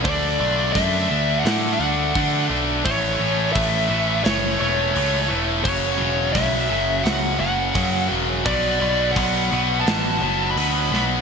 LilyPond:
<<
  \new Staff \with { instrumentName = "Lead electric guitar" } { \time 4/4 \key fis \minor \tempo 4 = 86 d''4 e''4 fis''8 fis''4 r8 | cis''4 e''4 cis''8 cis''4 r8 | cis''4 e''4 fis''8 fis''4 r8 | d''4 fis''4 a''4 b''8. r16 | }
  \new Staff \with { instrumentName = "Distorted electric guitar" } { \clef bass \time 4/4 \key fis \minor <d a d'>8 <d a d'>8 <d a d'>8 <d a d'>8 <d a d'>8 <d a d'>8 <d a d'>8 <d a d'>8 | <a, e a>8 <a, e a>8 <a, e a>8 <a, e a>8 <a, e a>8 <a, e a>8 <a, e a>8 <a, e a>8 | <fis, cis fis>8 <fis, cis fis>8 <fis, cis fis>8 <fis, cis fis>8 <fis, cis fis>8 <fis, cis fis>8 <fis, cis fis>8 <fis, cis fis>8 | <b, fis b>8 <b, fis b>8 <b, fis b>8 <b, fis b>8 <b, fis b>8 <b, fis b>8 <b, fis b>8 <b, fis b>8 | }
  \new Staff \with { instrumentName = "Picked electric bass" } { \clef bass \time 4/4 \key fis \minor d,8 b,,8 fis,8 d,8 a,8 d,8 d8 b,,8 | a,,8 a,,8 a,,8 a,,8 fis,,8 e,,8 cis,8 e,,8 | fis,,8 e,,8 b,,8 fis,,8 cis,8 fis,,8 fis,8 e,,8 | b,,8 b,,8 b,,8 b,,8 a,,8 fis,,8 d,8 b,,8 | }
  \new DrumStaff \with { instrumentName = "Drums" } \drummode { \time 4/4 <hho bd>4 <hho bd sn>4 <hho sn>4 <hho bd>4 | <hho bd>4 <hho bd>4 <hho sn>4 hho4 | <cymc bd>4 <hho bd sn>4 <hho sn>4 <hho bd>4 | <hho bd>4 <hho bd>4 <hho sn>4 hho8 sn8 | }
>>